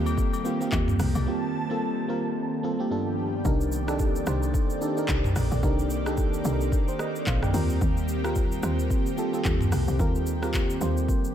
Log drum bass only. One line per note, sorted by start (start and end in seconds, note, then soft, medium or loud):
0.00 0.16 D#2 loud
0.72 0.98 D#2 loud
1.00 1.15 C2 loud
1.15 1.26 C2 medium
3.45 4.23 C2 loud
4.27 4.53 C2 loud
5.09 5.35 C2 medium
5.36 5.51 A#1 medium
5.52 5.63 A#1 medium
5.63 6.41 C2 loud
6.45 6.71 C2 loud
7.27 7.53 A#1 medium
7.54 7.80 D#2 loud
7.81 8.59 D#2 loud
8.63 8.89 D#2 loud
9.45 9.71 D#2 loud
9.72 9.87 C2 loud
9.88 9.99 C2 medium
9.99 10.77 D#2 loud
10.81 11.07 D#2 loud